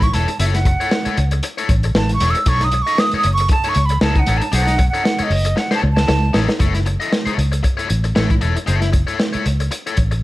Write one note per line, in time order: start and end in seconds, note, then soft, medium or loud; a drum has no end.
0.02 0.15 C#6 loud
0.02 muted overdriven electric guitar stroke soft
0.02 kick loud
0.02 closed hi-hat medium
0.13 0.26 E1 medium
0.13 0.28 E4 medium
0.13 0.28 A4 medium
0.13 0.27 C#5 medium
0.13 0.39 A5 medium
0.13 snare soft
0.13 closed hi-hat medium
0.28 muted overdriven electric guitar stroke medium
0.28 closed hi-hat medium
0.40 0.74 F#1 loud
0.40 0.57 E4 medium
0.40 0.55 A4 medium
0.40 0.54 C#5 medium
0.40 0.46 E5 medium
0.40 closed hi-hat loud
0.54 1.27 F#5 medium
0.54 muted overdriven electric guitar stroke soft
0.54 snare soft
0.54 closed hi-hat medium
0.65 muted overdriven electric guitar stroke soft
0.65 kick medium
0.65 closed hi-hat medium
0.80 0.91 E4 medium
0.80 0.92 A4 medium
0.80 0.91 C#5 medium
0.80 closed hi-hat medium
0.91 muted overdriven electric guitar stroke soft
0.91 snare loud
1.05 1.16 E4 medium
1.05 1.17 A4 medium
1.05 1.17 C#5 medium
1.05 muted fingered electric bass stroke medium
1.05 closed hi-hat medium
1.17 1.40 C#2 medium
1.17 muted overdriven electric guitar stroke soft
1.17 closed hi-hat medium
1.31 muted overdriven electric guitar stroke medium
1.31 closed hi-hat medium
1.43 muted overdriven electric guitar stroke soft
1.43 closed hi-hat medium
1.58 1.68 E4 medium
1.58 1.69 A4 medium
1.58 1.69 C#5 medium
1.58 closed hi-hat medium
1.69 1.91 A1 loud
1.69 muted overdriven electric guitar stroke medium
1.69 kick loud
1.69 closed hi-hat medium
1.83 muted overdriven electric guitar stroke soft
1.83 closed hi-hat medium
1.95 2.17 A1 medium
1.95 2.12 A5 medium
1.95 muted overdriven electric guitar stroke soft
1.95 snare loud
2.09 closed hi-hat medium
2.14 2.32 C#6 loud
2.20 2.33 E1 medium
2.20 2.35 E4 medium
2.20 2.35 A4 medium
2.20 2.36 C#5 medium
2.20 snare soft
2.20 closed hi-hat medium
2.31 2.49 E6 loud
2.35 muted overdriven electric guitar stroke medium
2.35 closed hi-hat medium
2.46 2.81 B1 loud
2.46 2.64 D#4 medium
2.46 2.62 A4 medium
2.46 2.61 C#5 loud
2.46 2.66 C#6 loud
2.46 kick loud
2.46 closed hi-hat medium
2.61 2.84 D#6 loud
2.61 muted overdriven electric guitar stroke medium
2.61 snare soft
2.61 closed hi-hat medium
2.72 muted overdriven electric guitar stroke soft
2.72 closed hi-hat medium
2.82 3.01 C#6 loud
2.87 2.98 D#4 medium
2.87 2.98 A4 medium
2.87 2.98 D#5 medium
2.87 closed hi-hat medium
2.98 3.16 D#6 loud
2.98 muted overdriven electric guitar stroke soft
2.98 snare loud
3.11 3.25 A4 medium
3.11 3.25 C#5 medium
3.11 muted fingered electric bass stroke soft
3.11 closed hi-hat medium
3.16 3.25 D#4 medium
3.16 3.32 D#6 loud
3.23 3.47 F#1 medium
3.23 muted overdriven electric guitar stroke soft
3.23 closed hi-hat medium
3.33 3.49 C#6 loud
3.38 muted overdriven electric guitar stroke soft
3.38 closed hi-hat medium
3.49 3.71 A5 loud
3.49 muted overdriven electric guitar stroke soft
3.49 kick loud
3.49 closed hi-hat medium
3.64 3.76 D#4 medium
3.64 3.76 A4 medium
3.64 3.77 C#5 medium
3.64 closed hi-hat medium
3.69 3.87 C#6 loud
3.74 3.98 C#2 loud
3.74 muted overdriven electric guitar stroke soft
3.74 closed hi-hat medium
3.86 4.02 B5 loud
3.86 closed hi-hat medium
3.90 muted overdriven electric guitar stroke soft
4.01 4.24 C#2 loud
4.01 4.19 D#4 loud
4.01 4.16 A4 loud
4.01 4.15 C#5 loud
4.01 4.21 A5 loud
4.01 snare loud
4.16 4.39 F#5 loud
4.16 muted overdriven electric guitar stroke soft
4.16 kick loud
4.16 closed hi-hat soft
4.26 4.40 A1 medium
4.26 4.42 D#4 medium
4.26 4.41 A4 medium
4.26 4.40 C#5 medium
4.26 snare soft
4.26 closed hi-hat medium
4.37 4.56 A5 medium
4.37 closed hi-hat medium
4.42 muted overdriven electric guitar stroke medium
4.52 4.88 B1 loud
4.52 4.73 D#4 loud
4.52 4.66 A4 loud
4.52 4.65 C#5 loud
4.52 4.88 F#5 loud
4.52 closed hi-hat loud
4.66 muted overdriven electric guitar stroke medium
4.66 snare soft
4.66 closed hi-hat medium
4.78 muted overdriven electric guitar stroke soft
4.78 kick medium
4.78 closed hi-hat medium
4.90 5.04 C#5 medium
4.90 5.25 F#5 loud
4.94 5.02 D#4 medium
4.94 5.04 A4 medium
4.94 closed hi-hat medium
5.04 muted overdriven electric guitar stroke soft
5.04 snare loud
5.19 5.30 D#4 medium
5.19 5.30 A4 medium
5.19 5.31 C#5 medium
5.19 muted fingered electric bass stroke soft
5.19 closed hi-hat medium
5.23 5.60 D#5 medium
5.30 5.53 F#1 medium
5.30 muted overdriven electric guitar stroke soft
5.30 open hi-hat medium
5.45 muted overdriven electric guitar stroke soft
5.45 closed hi-hat medium
5.56 5.75 F#5 loud
5.56 muted overdriven electric guitar stroke soft
5.56 snare medium
5.71 5.81 D#4 medium
5.71 5.82 A4 medium
5.71 5.82 C#5 medium
5.71 snare medium
5.75 5.81 A5 loud
5.82 6.05 C#2 loud
5.82 muted overdriven electric guitar stroke soft
5.92 6.40 A5 medium
5.97 muted overdriven electric guitar stroke medium
5.97 snare medium
6.08 6.31 C#2 loud
6.08 muted overdriven electric guitar stroke soft
6.08 snare loud
6.33 6.47 A1 medium
6.33 6.48 D#4 medium
6.33 6.48 A4 medium
6.33 6.48 C#5 medium
6.33 snare loud
6.49 muted overdriven electric guitar stroke soft
6.49 snare medium
6.60 6.95 F#1 loud
6.60 6.77 E4 medium
6.60 6.74 A4 medium
6.60 6.73 C#5 medium
6.60 kick loud
6.60 closed hi-hat medium
6.74 muted overdriven electric guitar stroke soft
6.74 snare soft
6.74 closed hi-hat soft
6.86 muted overdriven electric guitar stroke soft
6.86 closed hi-hat medium
7.00 7.10 E4 medium
7.00 7.11 A4 medium
7.00 7.12 D#5 medium
7.00 closed hi-hat soft
7.12 muted overdriven electric guitar stroke soft
7.12 snare medium
7.26 7.36 E4 medium
7.26 7.37 A4 medium
7.26 7.37 C#5 medium
7.26 muted fingered electric bass stroke soft
7.26 closed hi-hat medium
7.38 7.60 C#2 medium
7.38 muted overdriven electric guitar stroke soft
7.38 closed hi-hat medium
7.52 muted overdriven electric guitar stroke soft
7.52 closed hi-hat medium
7.63 muted overdriven electric guitar stroke soft
7.63 kick medium
7.63 closed hi-hat medium
7.77 7.87 E4 medium
7.77 7.88 A4 medium
7.77 7.88 C#5 medium
7.77 closed hi-hat soft
7.88 8.13 A1 medium
7.88 muted overdriven electric guitar stroke soft
7.88 closed hi-hat medium
8.04 muted overdriven electric guitar stroke soft
8.04 closed hi-hat soft
8.15 8.39 A1 medium
8.15 8.33 E4 medium
8.15 8.30 A4 medium
8.15 8.29 C#5 medium
8.15 snare loud
8.30 muted overdriven electric guitar stroke soft
8.30 kick medium
8.30 closed hi-hat soft
8.41 8.55 E1 medium
8.41 8.56 E4 medium
8.41 8.56 A4 medium
8.41 8.55 C#5 medium
8.41 closed hi-hat medium
8.56 muted overdriven electric guitar stroke soft
8.56 closed hi-hat medium
8.67 9.03 F#1 loud
8.67 8.88 E4 medium
8.67 8.81 A4 medium
8.67 8.80 C#5 medium
8.67 closed hi-hat medium
8.81 muted overdriven electric guitar stroke soft
8.81 snare soft
8.81 closed hi-hat medium
8.92 muted overdriven electric guitar stroke soft
8.92 kick medium
8.92 closed hi-hat medium
9.07 9.18 E4 soft
9.07 9.18 A4 medium
9.07 9.19 C#5 medium
9.07 closed hi-hat soft
9.19 muted overdriven electric guitar stroke soft
9.19 snare loud
9.33 9.44 E4 medium
9.33 9.45 A4 medium
9.33 9.45 C#5 medium
9.33 muted fingered electric bass stroke soft
9.33 closed hi-hat soft
9.45 9.68 C#2 medium
9.45 muted overdriven electric guitar stroke soft
9.45 closed hi-hat medium
9.60 muted overdriven electric guitar stroke soft
9.60 closed hi-hat medium
9.71 muted overdriven electric guitar stroke soft
9.71 closed hi-hat medium
9.87 9.96 E4 medium
9.87 9.97 A4 medium
9.87 9.97 C#5 medium
9.87 closed hi-hat soft
9.97 10.20 A1 medium
9.97 muted overdriven electric guitar stroke soft
9.97 kick medium
9.97 closed hi-hat medium
10.11 muted overdriven electric guitar stroke soft
10.11 closed hi-hat soft